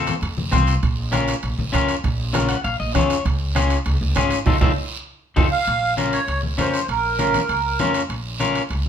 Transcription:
0.00 0.11 F2 loud
0.00 0.13 C4 medium
0.00 0.13 F4 medium
0.00 0.14 A4 medium
0.07 low conga medium
0.07 high timbale medium
0.07 short guiro medium
0.21 0.34 F2 loud
0.21 high timbale medium
0.21 long guiro medium
0.37 0.50 F2 medium
0.37 high conga medium
0.51 0.77 C2 loud
0.51 0.73 C4 medium
0.51 0.73 F4 medium
0.51 0.74 C5 medium
0.51 bombo low medium
0.51 bombo rim medium
0.51 high conga medium
0.51 low conga medium
0.51 high timbale medium
0.51 short guiro medium
0.67 high timbale medium
0.67 short guiro medium
0.83 1.31 A#1 loud
0.83 bombo low medium
0.83 high timbale medium
0.83 long guiro medium
1.12 1.34 C#4 medium
1.12 1.34 F4 medium
1.12 1.34 A#4 medium
1.12 bombo rim medium
1.12 high conga medium
1.12 high timbale medium
1.12 short guiro medium
1.28 high timbale medium
1.28 short guiro medium
1.43 1.56 A#1 loud
1.43 high timbale medium
1.43 long guiro medium
1.58 1.71 A#1 medium
1.58 high conga medium
1.72 1.98 F2 medium
1.72 1.94 C#4 medium
1.72 1.95 F4 medium
1.72 1.95 A#4 medium
1.72 bombo low medium
1.72 bombo rim medium
1.72 high conga medium
1.72 high timbale medium
1.72 short guiro medium
1.88 high timbale medium
1.88 short guiro medium
2.04 2.53 A#1 loud
2.04 bombo low medium
2.04 high timbale medium
2.04 long guiro medium
2.33 2.55 C#4 medium
2.33 2.55 F4 medium
2.33 2.55 A#4 medium
2.33 bombo rim medium
2.33 high conga medium
2.33 high timbale medium
2.33 short guiro medium
2.48 2.63 F#5 medium
2.48 high timbale medium
2.48 short guiro medium
2.64 2.77 A#1 loud
2.64 2.79 F5 medium
2.64 high timbale medium
2.64 long guiro medium
2.80 2.92 A#1 medium
2.80 2.94 D#5 medium
2.95 3.19 F2 medium
2.95 3.16 C#4 medium
2.95 3.16 F4 medium
2.95 3.17 G#4 medium
2.95 3.23 C#5 medium
2.95 bombo low medium
2.95 bombo rim medium
2.95 high conga medium
2.95 low conga medium
2.95 high timbale medium
2.95 short guiro medium
3.10 high timbale medium
3.10 short guiro medium
3.25 3.74 C#2 loud
3.25 bombo low medium
3.25 high timbale medium
3.25 long guiro medium
3.55 3.77 C#4 medium
3.55 3.77 F4 medium
3.55 3.77 G#4 medium
3.55 bombo rim medium
3.55 high conga medium
3.55 high timbale medium
3.55 short guiro medium
3.70 high timbale medium
3.70 short guiro medium
3.85 3.98 C#2 loud
3.85 high timbale medium
3.85 long guiro medium
4.01 4.13 C#2 medium
4.15 4.40 G#1 medium
4.15 4.37 C#4 medium
4.15 4.38 F4 medium
4.15 4.38 G#4 medium
4.15 bombo low medium
4.15 bombo rim medium
4.15 high conga medium
4.15 high timbale medium
4.15 low timbale medium
4.15 short guiro medium
4.31 high timbale medium
4.31 short guiro medium
4.46 4.58 F2 medium
4.46 4.56 D#4 medium
4.46 4.56 F4 medium
4.46 4.56 A4 medium
4.46 bombo low loud
4.46 high conga medium
4.46 high timbale medium
4.46 long guiro loud
4.61 4.73 F2 medium
4.61 4.71 D#4 loud
4.61 4.71 F4 medium
4.61 4.71 A4 loud
4.61 bombo low medium
4.61 high conga medium
4.61 high timbale loud
4.61 long guiro medium
5.36 5.49 F2 medium
5.36 5.46 D#4 medium
5.36 5.46 F4 medium
5.36 5.47 A4 medium
5.36 bombo low medium
5.36 high conga loud
5.36 high timbale loud
5.36 long guiro medium
5.52 5.95 F5 loud
5.67 6.16 A#1 medium
5.67 high timbale medium
5.67 long guiro medium
5.97 6.19 C#4 medium
5.97 6.19 F4 medium
5.97 6.19 A#4 medium
5.97 high conga medium
5.97 high timbale medium
5.97 short guiro medium
6.13 6.41 C#5 medium
6.13 high timbale medium
6.13 short guiro medium
6.28 6.52 C#2 medium
6.28 high timbale medium
6.28 long guiro medium
6.43 high conga medium
6.58 6.83 F2 medium
6.58 6.79 C#4 medium
6.58 6.80 F4 medium
6.58 6.80 A#4 medium
6.58 6.87 C5 medium
6.58 high conga medium
6.58 high timbale medium
6.58 low timbale medium
6.58 short guiro medium
6.74 high timbale medium
6.74 short guiro medium
6.88 7.37 A#1 medium
6.88 7.91 A#4 medium
6.88 high timbale medium
6.88 long guiro medium
7.19 7.40 C#4 medium
7.19 7.40 F4 medium
7.19 7.41 A#4 medium
7.19 high conga medium
7.19 high timbale medium
7.19 short guiro medium
7.34 low conga medium
7.34 high timbale medium
7.34 short guiro medium
7.49 7.73 C#2 medium
7.49 high timbale medium
7.49 long guiro medium
7.79 8.04 F2 medium
7.79 8.01 C#4 medium
7.79 8.01 F4 medium
7.79 8.01 A#4 medium
7.79 high conga medium
7.79 low conga medium
7.79 high timbale medium
7.79 short guiro medium
7.94 high timbale medium
7.94 short guiro medium
8.09 8.58 A#1 loud
8.09 high timbale medium
8.09 long guiro medium
8.40 8.61 C#4 medium
8.40 8.62 F4 medium
8.40 8.62 A#4 medium
8.40 high conga medium
8.40 high timbale medium
8.40 short guiro medium
8.55 high timbale medium
8.55 short guiro medium
8.69 8.89 C#2 medium
8.69 high timbale medium
8.69 long guiro medium

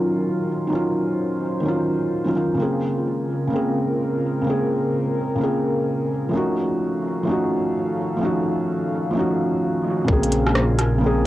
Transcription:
0.00 0.67 D#3 medium
0.00 2.55 D#3 medium
0.00 0.70 F#3 medium
0.00 2.54 F#3 medium
0.00 0.72 C#4 medium
0.00 2.55 C#4 medium
0.00 0.75 F4 medium
0.00 6.29 F4 medium
0.00 0.67 A#4 medium
0.67 1.59 D#3 medium
0.67 1.61 F#3 medium
0.67 2.56 C5 medium
0.72 1.63 C#4 medium
0.72 1.65 F4 medium
1.60 2.21 D#3 medium
1.60 2.22 F#3 medium
1.65 2.24 C#4 medium
1.65 2.25 F4 medium
2.24 2.31 D#3 medium
2.24 2.32 F#3 medium
2.24 2.33 C#4 medium
2.24 2.34 F4 medium
2.33 2.55 D#3 medium
2.33 2.56 F#3 medium
2.33 2.56 C#4 medium
2.37 2.57 F4 medium
2.54 3.46 C#3 medium
2.54 3.49 A#3 medium
2.58 6.30 C#3 medium
2.58 6.30 G#3 medium
2.58 6.30 C4 medium
2.58 3.51 C4 medium
2.58 3.52 G#4 medium
2.58 6.30 A#4 medium
3.47 4.40 C#3 medium
3.47 4.43 A#3 medium
3.53 4.44 C4 medium
3.53 4.46 G#4 medium
4.41 5.34 C#3 medium
4.41 5.36 A#3 medium
4.47 5.38 C4 medium
4.47 5.39 G#4 medium
5.35 6.29 C#3 medium
5.35 6.30 A#3 medium
5.41 6.32 C4 medium
5.41 6.33 G#4 medium
6.29 7.22 F3 medium
6.29 7.24 A3 medium
6.33 10.04 D#3 medium
6.33 7.25 C#4 medium
6.33 10.05 C#4 medium
6.33 7.26 D#4 medium
6.33 10.05 A4 medium
6.33 10.05 F5 medium
6.37 7.27 F#4 medium
7.23 8.15 F3 medium
7.23 8.17 A3 medium
7.23 8.19 C#4 medium
7.29 8.20 D#4 medium
7.29 8.21 F#4 medium
8.17 9.09 F3 medium
8.17 9.11 A3 medium
8.21 9.13 C#4 medium
8.21 9.14 D#4 medium
8.21 9.15 F#4 medium
9.11 10.04 F3 medium
9.11 10.05 A3 medium
9.15 10.06 C#4 medium
9.15 10.07 D#4 medium
9.19 10.08 F#4 medium
10.04 11.27 A#1 medium
10.04 10.96 C#3 medium
10.04 11.27 C#3 medium
10.04 11.27 G#3 medium
10.04 10.99 A#3 medium
10.04 11.27 C4 medium
10.04 11.27 F4 medium
10.04 11.27 A#4 medium
10.04 kick loud
10.10 11.01 C4 medium
10.10 11.02 G#4 medium
10.23 closed hi-hat soft
10.32 closed hi-hat medium
10.47 cross-stick medium
10.55 cross-stick loud
10.79 cross-stick medium
10.79 closed hi-hat medium
10.98 11.27 C#3 medium
10.98 11.27 A#3 medium
11.03 11.27 C4 medium
11.03 11.27 G#4 loud

